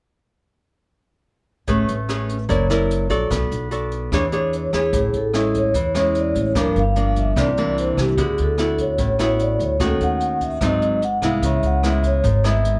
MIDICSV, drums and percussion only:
0, 0, Header, 1, 2, 480
1, 0, Start_track
1, 0, Key_signature, 3, "major"
1, 0, Tempo, 405954
1, 1990, Time_signature, 4, 2, 24, 8
1, 15129, End_track
2, 0, Start_track
2, 0, Title_t, "Drums"
2, 1980, Note_on_c, 9, 42, 49
2, 1985, Note_on_c, 9, 36, 51
2, 2098, Note_off_c, 9, 42, 0
2, 2103, Note_off_c, 9, 36, 0
2, 2226, Note_on_c, 9, 42, 37
2, 2344, Note_off_c, 9, 42, 0
2, 2470, Note_on_c, 9, 37, 48
2, 2470, Note_on_c, 9, 42, 37
2, 2588, Note_off_c, 9, 37, 0
2, 2588, Note_off_c, 9, 42, 0
2, 2710, Note_on_c, 9, 42, 42
2, 2828, Note_off_c, 9, 42, 0
2, 2950, Note_on_c, 9, 36, 50
2, 2953, Note_on_c, 9, 42, 51
2, 3068, Note_off_c, 9, 36, 0
2, 3071, Note_off_c, 9, 42, 0
2, 3193, Note_on_c, 9, 37, 50
2, 3193, Note_on_c, 9, 42, 39
2, 3311, Note_off_c, 9, 37, 0
2, 3311, Note_off_c, 9, 42, 0
2, 3435, Note_on_c, 9, 42, 41
2, 3553, Note_off_c, 9, 42, 0
2, 3677, Note_on_c, 9, 42, 37
2, 3795, Note_off_c, 9, 42, 0
2, 3911, Note_on_c, 9, 36, 54
2, 3913, Note_on_c, 9, 37, 53
2, 3913, Note_on_c, 9, 42, 55
2, 4030, Note_off_c, 9, 36, 0
2, 4032, Note_off_c, 9, 37, 0
2, 4032, Note_off_c, 9, 42, 0
2, 4158, Note_on_c, 9, 42, 39
2, 4276, Note_off_c, 9, 42, 0
2, 4393, Note_on_c, 9, 42, 38
2, 4512, Note_off_c, 9, 42, 0
2, 4629, Note_on_c, 9, 42, 36
2, 4748, Note_off_c, 9, 42, 0
2, 4871, Note_on_c, 9, 36, 48
2, 4873, Note_on_c, 9, 37, 51
2, 4873, Note_on_c, 9, 42, 47
2, 4989, Note_off_c, 9, 36, 0
2, 4992, Note_off_c, 9, 37, 0
2, 4992, Note_off_c, 9, 42, 0
2, 5112, Note_on_c, 9, 42, 38
2, 5230, Note_off_c, 9, 42, 0
2, 5355, Note_on_c, 9, 42, 40
2, 5473, Note_off_c, 9, 42, 0
2, 5591, Note_on_c, 9, 37, 51
2, 5591, Note_on_c, 9, 42, 36
2, 5709, Note_off_c, 9, 37, 0
2, 5709, Note_off_c, 9, 42, 0
2, 5828, Note_on_c, 9, 42, 51
2, 5830, Note_on_c, 9, 36, 52
2, 5946, Note_off_c, 9, 42, 0
2, 5948, Note_off_c, 9, 36, 0
2, 6071, Note_on_c, 9, 42, 37
2, 6190, Note_off_c, 9, 42, 0
2, 6309, Note_on_c, 9, 37, 55
2, 6309, Note_on_c, 9, 42, 37
2, 6427, Note_off_c, 9, 37, 0
2, 6427, Note_off_c, 9, 42, 0
2, 6551, Note_on_c, 9, 36, 22
2, 6555, Note_on_c, 9, 42, 41
2, 6669, Note_off_c, 9, 36, 0
2, 6674, Note_off_c, 9, 42, 0
2, 6790, Note_on_c, 9, 36, 52
2, 6790, Note_on_c, 9, 42, 52
2, 6908, Note_off_c, 9, 36, 0
2, 6908, Note_off_c, 9, 42, 0
2, 7031, Note_on_c, 9, 37, 50
2, 7031, Note_on_c, 9, 42, 39
2, 7149, Note_off_c, 9, 37, 0
2, 7149, Note_off_c, 9, 42, 0
2, 7270, Note_on_c, 9, 42, 41
2, 7388, Note_off_c, 9, 42, 0
2, 7509, Note_on_c, 9, 36, 21
2, 7512, Note_on_c, 9, 42, 39
2, 7627, Note_off_c, 9, 36, 0
2, 7631, Note_off_c, 9, 42, 0
2, 7747, Note_on_c, 9, 37, 51
2, 7747, Note_on_c, 9, 42, 52
2, 7749, Note_on_c, 9, 36, 53
2, 7865, Note_off_c, 9, 37, 0
2, 7865, Note_off_c, 9, 42, 0
2, 7867, Note_off_c, 9, 36, 0
2, 7990, Note_on_c, 9, 42, 36
2, 8108, Note_off_c, 9, 42, 0
2, 8227, Note_on_c, 9, 42, 39
2, 8346, Note_off_c, 9, 42, 0
2, 8465, Note_on_c, 9, 42, 38
2, 8467, Note_on_c, 9, 36, 23
2, 8584, Note_off_c, 9, 42, 0
2, 8585, Note_off_c, 9, 36, 0
2, 8708, Note_on_c, 9, 36, 56
2, 8711, Note_on_c, 9, 37, 55
2, 8711, Note_on_c, 9, 42, 49
2, 8827, Note_off_c, 9, 36, 0
2, 8829, Note_off_c, 9, 37, 0
2, 8829, Note_off_c, 9, 42, 0
2, 8953, Note_on_c, 9, 42, 35
2, 9071, Note_off_c, 9, 42, 0
2, 9194, Note_on_c, 9, 42, 39
2, 9313, Note_off_c, 9, 42, 0
2, 9428, Note_on_c, 9, 36, 23
2, 9430, Note_on_c, 9, 37, 55
2, 9430, Note_on_c, 9, 42, 36
2, 9546, Note_off_c, 9, 36, 0
2, 9548, Note_off_c, 9, 37, 0
2, 9548, Note_off_c, 9, 42, 0
2, 9667, Note_on_c, 9, 36, 51
2, 9668, Note_on_c, 9, 42, 51
2, 9786, Note_off_c, 9, 36, 0
2, 9786, Note_off_c, 9, 42, 0
2, 9904, Note_on_c, 9, 42, 36
2, 10022, Note_off_c, 9, 42, 0
2, 10143, Note_on_c, 9, 37, 52
2, 10143, Note_on_c, 9, 42, 39
2, 10261, Note_off_c, 9, 37, 0
2, 10261, Note_off_c, 9, 42, 0
2, 10382, Note_on_c, 9, 42, 41
2, 10383, Note_on_c, 9, 36, 23
2, 10500, Note_off_c, 9, 42, 0
2, 10502, Note_off_c, 9, 36, 0
2, 10619, Note_on_c, 9, 42, 53
2, 10623, Note_on_c, 9, 36, 51
2, 10737, Note_off_c, 9, 42, 0
2, 10741, Note_off_c, 9, 36, 0
2, 10867, Note_on_c, 9, 37, 51
2, 10867, Note_on_c, 9, 42, 39
2, 10986, Note_off_c, 9, 37, 0
2, 10986, Note_off_c, 9, 42, 0
2, 11105, Note_on_c, 9, 42, 43
2, 11223, Note_off_c, 9, 42, 0
2, 11347, Note_on_c, 9, 36, 21
2, 11350, Note_on_c, 9, 42, 40
2, 11465, Note_off_c, 9, 36, 0
2, 11468, Note_off_c, 9, 42, 0
2, 11586, Note_on_c, 9, 37, 52
2, 11586, Note_on_c, 9, 42, 52
2, 11588, Note_on_c, 9, 36, 53
2, 11704, Note_off_c, 9, 37, 0
2, 11704, Note_off_c, 9, 42, 0
2, 11706, Note_off_c, 9, 36, 0
2, 11831, Note_on_c, 9, 42, 36
2, 11949, Note_off_c, 9, 42, 0
2, 12065, Note_on_c, 9, 42, 37
2, 12183, Note_off_c, 9, 42, 0
2, 12307, Note_on_c, 9, 36, 23
2, 12307, Note_on_c, 9, 42, 38
2, 12425, Note_off_c, 9, 36, 0
2, 12425, Note_off_c, 9, 42, 0
2, 12543, Note_on_c, 9, 37, 53
2, 12543, Note_on_c, 9, 42, 51
2, 12547, Note_on_c, 9, 36, 54
2, 12661, Note_off_c, 9, 37, 0
2, 12661, Note_off_c, 9, 42, 0
2, 12665, Note_off_c, 9, 36, 0
2, 12789, Note_on_c, 9, 42, 35
2, 12907, Note_off_c, 9, 42, 0
2, 13030, Note_on_c, 9, 42, 40
2, 13148, Note_off_c, 9, 42, 0
2, 13265, Note_on_c, 9, 37, 49
2, 13265, Note_on_c, 9, 42, 37
2, 13268, Note_on_c, 9, 36, 22
2, 13384, Note_off_c, 9, 37, 0
2, 13384, Note_off_c, 9, 42, 0
2, 13387, Note_off_c, 9, 36, 0
2, 13509, Note_on_c, 9, 36, 51
2, 13509, Note_on_c, 9, 42, 52
2, 13627, Note_off_c, 9, 36, 0
2, 13627, Note_off_c, 9, 42, 0
2, 13747, Note_on_c, 9, 42, 34
2, 13866, Note_off_c, 9, 42, 0
2, 13991, Note_on_c, 9, 37, 54
2, 13991, Note_on_c, 9, 42, 38
2, 14109, Note_off_c, 9, 37, 0
2, 14109, Note_off_c, 9, 42, 0
2, 14230, Note_on_c, 9, 36, 23
2, 14230, Note_on_c, 9, 42, 39
2, 14348, Note_off_c, 9, 36, 0
2, 14348, Note_off_c, 9, 42, 0
2, 14471, Note_on_c, 9, 36, 53
2, 14471, Note_on_c, 9, 42, 54
2, 14589, Note_off_c, 9, 36, 0
2, 14589, Note_off_c, 9, 42, 0
2, 14712, Note_on_c, 9, 37, 54
2, 14712, Note_on_c, 9, 42, 38
2, 14830, Note_off_c, 9, 37, 0
2, 14830, Note_off_c, 9, 42, 0
2, 14952, Note_on_c, 9, 42, 44
2, 15070, Note_off_c, 9, 42, 0
2, 15129, End_track
0, 0, End_of_file